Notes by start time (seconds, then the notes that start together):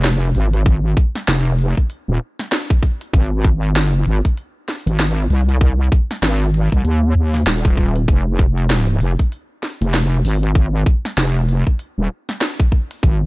Already playing: F1
0.04 snare, closed hi-hat
0.35 G#1, open hi-hat
0.54 closed hi-hat
0.66 kick, closed hi-hat
0.97 kick
1.15 snare, closed hi-hat
1.28 F1, snare, closed hi-hat
1.59 open hi-hat
1.77 kick, closed hi-hat
1.90 closed hi-hat
2.08 D#1
2.39 snare, closed hi-hat
2.52 snare, closed hi-hat
2.70 kick
2.83 kick, open hi-hat
3.01 closed hi-hat
3.13 G#1, kick, closed hi-hat
3.44 kick
3.63 closed hi-hat
3.76 G1, snare, closed hi-hat
4.06 G#1
4.25 kick, closed hi-hat
4.37 closed hi-hat
4.68 snare
4.86 G#1, closed hi-hat
4.99 snare, closed hi-hat
5.30 C2, open hi-hat
5.49 closed hi-hat
5.61 kick, closed hi-hat
5.92 kick
6.11 snare, closed hi-hat
6.22 G#1, snare, closed hi-hat
6.54 open hi-hat
6.72 C2, kick, closed hi-hat
6.84 D#2, closed hi-hat
7.15 D#2
7.34 snare, closed hi-hat
7.46 D#1, snare, closed hi-hat
7.65 kick
7.77 kick, open hi-hat
7.96 closed hi-hat
8.08 F1, kick, closed hi-hat
8.39 kick
8.58 closed hi-hat
8.70 snare, closed hi-hat
9.00 F1, open hi-hat
9.19 kick, closed hi-hat
9.32 closed hi-hat
9.63 snare
9.81 F1, closed hi-hat
9.94 snare, closed hi-hat
10.24 G#1, open hi-hat
10.43 closed hi-hat
10.55 kick, closed hi-hat
10.86 kick
11.05 snare
11.17 F1, snare, closed hi-hat
11.49 open hi-hat
11.67 kick
11.79 closed hi-hat
11.98 D#1
12.29 snare, closed hi-hat
12.41 snare, closed hi-hat
12.60 kick
12.72 kick
12.91 closed hi-hat, open hi-hat
13.03 G#1, kick, closed hi-hat